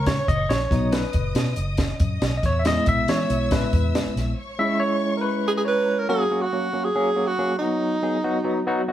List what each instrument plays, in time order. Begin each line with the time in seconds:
Already playing: fingered electric bass C#2, string section C#5 C#6
0.06 tine electric piano C#5, kick, snare, closed hi-hat
0.28 fingered electric bass F#1, tine electric piano D#5, kick, closed hi-hat
0.49 fingered electric bass A#1, tine electric piano C#5, snare, closed hi-hat
0.71 fingered electric bass B1, tine electric piano F#3 B3 D#4, string section D#5 D#6, kick, snare, closed hi-hat
0.92 tine electric piano B4, snare, closed hi-hat
1.13 fingered electric bass F#1, kick, closed hi-hat
1.35 fingered electric bass B2, snare, closed hi-hat
1.56 fingered electric bass F#1, closed hi-hat
1.77 kick, snare, closed hi-hat
1.99 fingered electric bass F#2, string section D#5 D#6, kick, closed hi-hat
2.22 fingered electric bass B1, snare, closed hi-hat
2.37 tine electric piano D#5
2.43 fingered electric bass E2, tine electric piano C#5, string section E5 E6, kick, snare, closed hi-hat
2.59 tine electric piano E5
2.65 tine electric piano G#3 B3 E4 D#5, snare, closed hi-hat
2.86 fingered electric bass B1, tine electric piano E5, kick, closed hi-hat
3.08 fingered electric bass E3, tine electric piano C#5, snare, closed hi-hat
3.30 fingered electric bass B1, closed hi-hat
3.51 tine electric piano B4, kick, snare, closed hi-hat
3.73 fingered electric bass E2, kick, closed hi-hat
3.95 snare, closed hi-hat
4.06 muted fingered electric bass stroke
4.16 fingered electric bass A#1, snare, closed hi-hat
4.37 string section C#5 C#6
4.59 tine electric piano G#3 C#4 E4 E5
4.80 tine electric piano C#5
5.17 tine electric piano A#4
5.21 tine electric piano B4
5.44 string section G#4 A#5
5.48 tenor saxophone G#4
5.57 tenor saxophone G#4
5.65 tenor saxophone B4, tine electric piano C#5
5.99 tenor saxophone A#4
6.09 tine electric piano F#3 A#3 C#4 F#4, tenor saxophone G#4
6.31 tine electric piano F#3 A#3 C#4 F#4
6.41 tenor saxophone F#4
6.53 tine electric piano F#3 A#3 C#4 F#4
6.73 tine electric piano F#3 A#3 C#4 F#4
6.84 tenor saxophone G#4
6.95 tine electric piano F#3 A#3 C#4 G#4
7.16 tine electric piano F#3 A#3 C#4 F#4
7.27 tenor saxophone F#4
7.38 tine electric piano F#3 A#3 C#4 G#4
7.59 tine electric piano F#3 B3 D#4 F#4, tenor saxophone D#4
8.03 tine electric piano F#3 B3 D#4 G#4
8.24 tine electric piano F#3 B3 D#4 F#4
8.44 tine electric piano F#3 B3 D#4 F#4
8.67 tine electric piano F#3 B3 D#4 F#4
8.88 tine electric piano F#3 B3 D#4 F#4